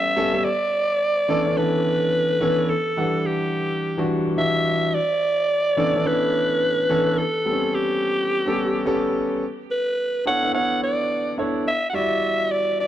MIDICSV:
0, 0, Header, 1, 3, 480
1, 0, Start_track
1, 0, Key_signature, 2, "minor"
1, 0, Tempo, 560748
1, 377, Time_signature, 4, 2, 24, 8
1, 11018, End_track
2, 0, Start_track
2, 0, Title_t, "Alto saxophone"
2, 0, Program_c, 0, 65
2, 0, Note_on_c, 0, 76, 119
2, 378, Note_on_c, 0, 74, 112
2, 391, Note_off_c, 0, 76, 0
2, 1346, Note_on_c, 0, 71, 106
2, 1359, Note_off_c, 0, 74, 0
2, 2307, Note_on_c, 0, 69, 87
2, 2320, Note_off_c, 0, 71, 0
2, 2794, Note_on_c, 0, 67, 86
2, 2807, Note_off_c, 0, 69, 0
2, 3516, Note_off_c, 0, 67, 0
2, 3750, Note_on_c, 0, 76, 113
2, 4232, Note_on_c, 0, 74, 108
2, 4245, Note_off_c, 0, 76, 0
2, 5192, Note_on_c, 0, 71, 109
2, 5205, Note_off_c, 0, 74, 0
2, 6145, Note_on_c, 0, 69, 95
2, 6158, Note_off_c, 0, 71, 0
2, 6631, Note_on_c, 0, 67, 94
2, 6644, Note_off_c, 0, 69, 0
2, 7824, Note_off_c, 0, 67, 0
2, 8310, Note_on_c, 0, 71, 98
2, 8750, Note_off_c, 0, 71, 0
2, 8793, Note_on_c, 0, 78, 113
2, 9009, Note_off_c, 0, 78, 0
2, 9027, Note_on_c, 0, 78, 100
2, 9246, Note_off_c, 0, 78, 0
2, 9272, Note_on_c, 0, 74, 94
2, 9712, Note_off_c, 0, 74, 0
2, 9995, Note_on_c, 0, 76, 110
2, 10166, Note_off_c, 0, 76, 0
2, 10184, Note_on_c, 0, 78, 76
2, 10226, Note_on_c, 0, 76, 113
2, 10239, Note_off_c, 0, 78, 0
2, 10712, Note_on_c, 0, 74, 100
2, 10725, Note_off_c, 0, 76, 0
2, 10945, Note_off_c, 0, 74, 0
2, 10959, Note_on_c, 0, 74, 101
2, 11018, Note_off_c, 0, 74, 0
2, 11018, End_track
3, 0, Start_track
3, 0, Title_t, "Grand piano"
3, 0, Program_c, 1, 0
3, 0, Control_c, 1, 64, 127
3, 0, Note_on_c, 1, 55, 91
3, 0, Note_on_c, 1, 59, 88
3, 0, Note_on_c, 1, 61, 85
3, 0, Note_on_c, 1, 69, 98
3, 0, Note_on_c, 1, 71, 99
3, 138, Note_off_c, 1, 55, 0
3, 138, Note_on_c, 1, 55, 103
3, 140, Note_off_c, 1, 59, 0
3, 140, Note_on_c, 1, 59, 90
3, 145, Note_off_c, 1, 61, 0
3, 145, Note_on_c, 1, 61, 98
3, 147, Note_off_c, 1, 69, 0
3, 147, Note_on_c, 1, 69, 122
3, 237, Note_off_c, 1, 55, 0
3, 239, Note_off_c, 1, 59, 0
3, 241, Note_off_c, 1, 61, 0
3, 242, Note_off_c, 1, 69, 0
3, 283, Note_on_c, 1, 55, 89
3, 288, Note_on_c, 1, 59, 83
3, 289, Note_on_c, 1, 61, 83
3, 293, Note_on_c, 1, 69, 97
3, 378, Note_off_c, 1, 55, 0
3, 380, Note_off_c, 1, 59, 0
3, 381, Note_off_c, 1, 61, 0
3, 383, Note_off_c, 1, 69, 0
3, 389, Control_c, 1, 64, 0
3, 392, Note_off_c, 1, 71, 0
3, 520, Control_c, 1, 64, 127
3, 1098, Note_on_c, 1, 52, 90
3, 1101, Note_on_c, 1, 59, 84
3, 1104, Note_on_c, 1, 61, 93
3, 1108, Note_on_c, 1, 62, 84
3, 1111, Note_on_c, 1, 69, 109
3, 1198, Note_off_c, 1, 52, 0
3, 1199, Note_off_c, 1, 59, 0
3, 1201, Note_off_c, 1, 61, 0
3, 1203, Note_off_c, 1, 62, 0
3, 1204, Note_off_c, 1, 69, 0
3, 1245, Note_on_c, 1, 52, 73
3, 1248, Note_on_c, 1, 59, 68
3, 1249, Note_on_c, 1, 61, 63
3, 1254, Note_on_c, 1, 62, 67
3, 1255, Note_on_c, 1, 69, 81
3, 1309, Note_off_c, 1, 52, 0
3, 1311, Note_off_c, 1, 59, 0
3, 1311, Note_off_c, 1, 61, 0
3, 1314, Note_off_c, 1, 62, 0
3, 1315, Note_off_c, 1, 69, 0
3, 1338, Note_on_c, 1, 52, 76
3, 1342, Note_on_c, 1, 59, 72
3, 1345, Note_on_c, 1, 61, 71
3, 1348, Note_on_c, 1, 62, 74
3, 1349, Note_on_c, 1, 69, 88
3, 1838, Note_off_c, 1, 52, 0
3, 1840, Note_off_c, 1, 59, 0
3, 1841, Note_off_c, 1, 61, 0
3, 1843, Note_off_c, 1, 62, 0
3, 1843, Note_off_c, 1, 69, 0
3, 2059, Note_on_c, 1, 52, 100
3, 2061, Note_on_c, 1, 59, 87
3, 2063, Note_on_c, 1, 61, 83
3, 2065, Note_on_c, 1, 62, 87
3, 2068, Note_on_c, 1, 69, 108
3, 2298, Note_off_c, 1, 52, 0
3, 2299, Note_off_c, 1, 59, 0
3, 2300, Note_off_c, 1, 61, 0
3, 2301, Note_off_c, 1, 62, 0
3, 2303, Note_off_c, 1, 69, 0
3, 2309, Control_c, 1, 64, 0
3, 2436, Control_c, 1, 64, 127
3, 2539, Note_on_c, 1, 52, 82
3, 2544, Note_on_c, 1, 55, 77
3, 2546, Note_on_c, 1, 62, 73
3, 2550, Note_on_c, 1, 78, 92
3, 3138, Note_off_c, 1, 52, 0
3, 3140, Note_off_c, 1, 55, 0
3, 3142, Note_off_c, 1, 62, 0
3, 3143, Note_off_c, 1, 78, 0
3, 3401, Note_on_c, 1, 52, 85
3, 3405, Note_on_c, 1, 55, 83
3, 3409, Note_on_c, 1, 62, 84
3, 3413, Note_on_c, 1, 66, 98
3, 3648, Note_off_c, 1, 52, 0
3, 3650, Note_off_c, 1, 55, 0
3, 3652, Note_off_c, 1, 62, 0
3, 3654, Note_off_c, 1, 66, 0
3, 3740, Note_on_c, 1, 52, 81
3, 3745, Note_on_c, 1, 55, 71
3, 3748, Note_on_c, 1, 62, 76
3, 3750, Note_on_c, 1, 66, 86
3, 4219, Note_off_c, 1, 52, 0
3, 4221, Note_off_c, 1, 55, 0
3, 4223, Note_off_c, 1, 62, 0
3, 4224, Note_off_c, 1, 66, 0
3, 4227, Control_c, 1, 64, 0
3, 4398, Control_c, 1, 64, 127
3, 4936, Note_on_c, 1, 52, 96
3, 4940, Note_on_c, 1, 59, 83
3, 4943, Note_on_c, 1, 61, 89
3, 4943, Note_on_c, 1, 62, 93
3, 4948, Note_on_c, 1, 69, 104
3, 5036, Note_off_c, 1, 52, 0
3, 5038, Note_off_c, 1, 59, 0
3, 5040, Note_off_c, 1, 61, 0
3, 5040, Note_off_c, 1, 62, 0
3, 5043, Note_off_c, 1, 69, 0
3, 5086, Note_on_c, 1, 52, 78
3, 5088, Note_on_c, 1, 59, 72
3, 5091, Note_on_c, 1, 61, 69
3, 5091, Note_on_c, 1, 62, 68
3, 5095, Note_on_c, 1, 69, 83
3, 5150, Note_off_c, 1, 52, 0
3, 5151, Note_off_c, 1, 59, 0
3, 5152, Note_off_c, 1, 61, 0
3, 5153, Note_off_c, 1, 62, 0
3, 5154, Note_off_c, 1, 69, 0
3, 5178, Note_on_c, 1, 52, 83
3, 5181, Note_on_c, 1, 59, 80
3, 5182, Note_on_c, 1, 61, 76
3, 5186, Note_on_c, 1, 62, 75
3, 5188, Note_on_c, 1, 69, 92
3, 5678, Note_off_c, 1, 52, 0
3, 5679, Note_off_c, 1, 59, 0
3, 5680, Note_off_c, 1, 61, 0
3, 5682, Note_off_c, 1, 62, 0
3, 5683, Note_off_c, 1, 69, 0
3, 5899, Note_on_c, 1, 52, 94
3, 5901, Note_on_c, 1, 59, 86
3, 5904, Note_on_c, 1, 61, 82
3, 5906, Note_on_c, 1, 62, 88
3, 5910, Note_on_c, 1, 69, 111
3, 6139, Note_off_c, 1, 52, 0
3, 6140, Note_off_c, 1, 59, 0
3, 6141, Note_off_c, 1, 61, 0
3, 6142, Note_off_c, 1, 62, 0
3, 6144, Note_off_c, 1, 69, 0
3, 6148, Control_c, 1, 64, 0
3, 6276, Control_c, 1, 64, 127
3, 6379, Note_on_c, 1, 55, 77
3, 6381, Note_on_c, 1, 59, 75
3, 6385, Note_on_c, 1, 60, 60
3, 6390, Note_on_c, 1, 69, 88
3, 6441, Note_on_c, 1, 61, 75
3, 6449, Note_off_c, 1, 60, 0
3, 6978, Note_off_c, 1, 55, 0
3, 6979, Note_off_c, 1, 59, 0
3, 6983, Note_off_c, 1, 69, 0
3, 7009, Note_off_c, 1, 61, 0
3, 7243, Note_on_c, 1, 55, 94
3, 7246, Note_on_c, 1, 59, 87
3, 7250, Note_on_c, 1, 61, 83
3, 7253, Note_on_c, 1, 69, 99
3, 7489, Note_off_c, 1, 55, 0
3, 7491, Note_off_c, 1, 59, 0
3, 7492, Note_off_c, 1, 61, 0
3, 7494, Note_off_c, 1, 69, 0
3, 7579, Note_on_c, 1, 55, 87
3, 7583, Note_on_c, 1, 59, 93
3, 7585, Note_on_c, 1, 61, 90
3, 7589, Note_on_c, 1, 69, 113
3, 8058, Note_off_c, 1, 55, 0
3, 8060, Note_off_c, 1, 59, 0
3, 8061, Note_off_c, 1, 61, 0
3, 8063, Note_off_c, 1, 69, 0
3, 8067, Control_c, 1, 64, 0
3, 8205, Control_c, 1, 64, 127
3, 8777, Note_on_c, 1, 59, 77
3, 8780, Note_on_c, 1, 62, 76
3, 8782, Note_on_c, 1, 64, 68
3, 8786, Note_on_c, 1, 69, 76
3, 8788, Note_on_c, 1, 73, 88
3, 8877, Note_off_c, 1, 59, 0
3, 8879, Note_off_c, 1, 62, 0
3, 8880, Note_off_c, 1, 64, 0
3, 8882, Note_off_c, 1, 69, 0
3, 8882, Note_off_c, 1, 73, 0
3, 8923, Note_on_c, 1, 59, 72
3, 8927, Note_on_c, 1, 62, 68
3, 8928, Note_on_c, 1, 64, 67
3, 8930, Note_on_c, 1, 69, 64
3, 8934, Note_on_c, 1, 71, 74
3, 8988, Note_off_c, 1, 59, 0
3, 8990, Note_off_c, 1, 62, 0
3, 8991, Note_off_c, 1, 64, 0
3, 8992, Note_off_c, 1, 69, 0
3, 8994, Note_off_c, 1, 71, 0
3, 9017, Note_on_c, 1, 59, 79
3, 9020, Note_on_c, 1, 62, 70
3, 9021, Note_on_c, 1, 64, 68
3, 9023, Note_on_c, 1, 69, 72
3, 9027, Note_on_c, 1, 73, 91
3, 9518, Note_off_c, 1, 59, 0
3, 9519, Note_off_c, 1, 62, 0
3, 9519, Note_off_c, 1, 64, 0
3, 9520, Note_off_c, 1, 69, 0
3, 9522, Note_off_c, 1, 73, 0
3, 9738, Note_on_c, 1, 59, 76
3, 9739, Note_on_c, 1, 62, 77
3, 9742, Note_on_c, 1, 64, 75
3, 9745, Note_on_c, 1, 69, 76
3, 9748, Note_on_c, 1, 73, 90
3, 9978, Note_off_c, 1, 59, 0
3, 9978, Note_off_c, 1, 62, 0
3, 9980, Note_off_c, 1, 64, 0
3, 9981, Note_off_c, 1, 69, 0
3, 9983, Note_off_c, 1, 73, 0
3, 9987, Control_c, 1, 64, 0
3, 10157, Control_c, 1, 64, 127
3, 10213, Note_on_c, 1, 55, 88
3, 10218, Note_on_c, 1, 64, 77
3, 10223, Note_on_c, 1, 66, 74
3, 10224, Note_on_c, 1, 74, 89
3, 10815, Note_off_c, 1, 55, 0
3, 10817, Note_off_c, 1, 64, 0
3, 10820, Note_off_c, 1, 66, 0
3, 10820, Note_off_c, 1, 74, 0
3, 11018, End_track
0, 0, End_of_file